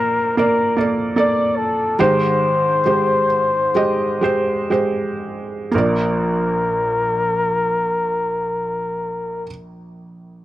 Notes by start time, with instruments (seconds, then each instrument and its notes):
Already playing: felt piano A#2 F3 A#3 A#4 C5 D5, flugelhorn A#4
0.37 felt piano A#3 A#4 D5, flugelhorn A#4
0.77 felt piano A#3 A4 D5
1.16 felt piano A#3 A4 D5, flugelhorn D5
1.57 flugelhorn A4
1.99 felt piano G#2 D#3 G#3 G4 C5, flugelhorn C5
2.85 felt piano G#3 G4 C5
3.75 felt piano G#3 G4 D#5
4.21 felt piano G#3 G4 C5
4.70 felt piano G#3 G4 C5
5.72 felt piano A#1 A#3 A#4
5.77 flugelhorn A#4, felt piano D5